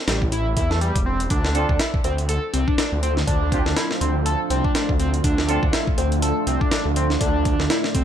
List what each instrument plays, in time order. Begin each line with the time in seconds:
0.07 detuned saw bass A1, analog synth lead G3, snare, closed hi-hat
0.22 kick
0.32 analog synth lead E4, closed hi-hat
0.57 detuned saw bass E2, analog synth lead E4, kick, closed hi-hat
0.71 analog synth lead A3, snare
0.81 analog synth lead G3, closed hi-hat
0.96 detuned saw bass E1, kick, closed hi-hat
1.06 analog synth lead C4
1.20 closed hi-hat
1.30 detuned saw bass D2, ambient pad A3 D4 F4 C5, analog synth lead D4, kick, closed hi-hat
1.45 snare
1.55 brass ensemble C4 D4 F4 A4, closed hi-hat
1.69 detuned saw bass D2, kick
1.79 analog synth lead E4, snare, closed hi-hat
1.94 kick
2.04 detuned saw bass D2, analog synth lead C4, closed hi-hat
2.18 closed hi-hat
2.29 analog synth lead A4, closed hi-hat
2.53 detuned saw bass C2, analog synth lead C4, closed hi-hat
2.68 analog synth lead D4, kick
2.78 analog synth lead D4, snare, closed hi-hat
2.92 detuned saw bass D2
3.03 analog synth lead C4, closed hi-hat
3.17 snare
3.27 detuned saw bass D2, analog synth lead D4, kick, closed hi-hat
3.52 brass ensemble C4 D4 F4 G4, kick, closed hi-hat
3.66 detuned saw bass D2, snare
3.76 analog synth lead E4, snare, closed hi-hat
3.91 snare
4.01 detuned saw bass D2, analog synth lead C4, closed hi-hat
4.26 analog synth lead A4, closed hi-hat
4.50 detuned saw bass C2, analog synth lead C4, closed hi-hat
4.64 analog synth lead D4, kick
4.75 analog synth lead D4, snare, closed hi-hat
4.89 detuned saw bass D2, kick
5.00 analog synth lead C4, closed hi-hat
5.14 closed hi-hat
5.24 detuned saw bass D2, analog synth lead D4, ambient pad D5, kick, closed hi-hat
5.38 snare
5.48 brass ensemble C4 D4 F4 A4, closed hi-hat
5.63 detuned saw bass D2, kick
5.73 analog synth lead E4, snare, closed hi-hat
5.87 kick
5.98 detuned saw bass D2, analog synth lead C4, closed hi-hat
6.12 closed hi-hat
6.22 analog synth lead A4, closed hi-hat
6.47 detuned saw bass C2, analog synth lead C4, closed hi-hat
6.61 analog synth lead D4, kick
6.71 analog synth lead D4, snare, closed hi-hat
6.86 detuned saw bass D2
6.96 analog synth lead C4, closed hi-hat
7.10 snare
7.21 detuned saw bass D2, analog synth lead D4, kick, closed hi-hat
7.45 kick, closed hi-hat
7.59 detuned saw bass D2, snare
7.70 analog synth lead E4, snare, closed hi-hat
7.84 snare
7.95 detuned saw bass D2, analog synth lead C4, kick, closed hi-hat